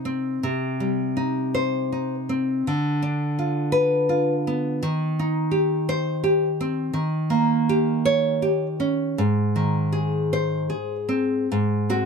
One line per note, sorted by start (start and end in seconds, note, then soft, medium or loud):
0.00 0.38 C3 medium
0.00 0.42 D#4 soft
0.05 0.43 C4 soft
0.43 2.62 C3 medium
0.80 1.92 G3 soft
1.17 1.91 D#4 soft
1.55 2.14 C5 medium
1.92 2.66 D#4 soft
2.29 2.66 C4 soft
2.67 4.80 D3 medium
3.02 4.11 D4 soft
3.39 4.08 F4 soft
3.72 4.32 B4 medium
4.09 4.83 F4 medium
4.47 4.83 B3 soft
4.83 6.92 D#3 medium
5.19 6.26 D#4 soft
5.51 6.22 G4 medium
5.89 6.45 C5 medium
6.24 6.95 G4 medium
6.61 6.96 C4 medium
6.93 9.15 D#3 medium
7.30 8.43 A#3 soft
7.69 8.41 G4 medium
8.05 8.66 C#5 medium
8.42 9.19 G4 medium
8.80 9.19 C#4 soft
9.18 11.45 G#2 medium
9.56 10.72 D#3 soft
9.93 10.68 G#4 medium
10.33 10.95 C5 medium
10.70 11.49 G#4 medium
11.09 11.49 C4 soft
11.52 12.05 G#2 medium
11.90 12.05 C4 soft
11.90 12.05 F#4 medium